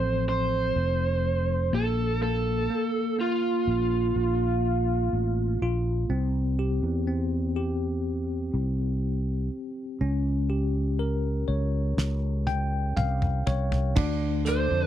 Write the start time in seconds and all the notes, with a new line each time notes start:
Already playing: A1 F3 C4 A4 C5
0.29 C5
0.76 F1
1.73 A#1 A#3 A4
2.21 A#3 A4
2.70 A#3
3.19 A#3 F4
3.67 A#1
4.16 A#1
5.13 A1
5.62 A#1 F4
6.09 C2 C4
6.59 G4
6.83 E2
7.07 C4
7.56 G4
8.54 C2
10.01 C#2 C#4
10.50 G4
10.99 A#4
11.48 C#2 C#5
11.97 C#2, snare
12.47 G5, high tom
12.97 C2 F5, mid tom
13.22 mid tom
13.47 C2 C#5, floor tom
13.72 floor tom
13.96 D2 D3 D4, kick, crash
14.45 D4 A4 C5, closed hi-hat
14.71 F2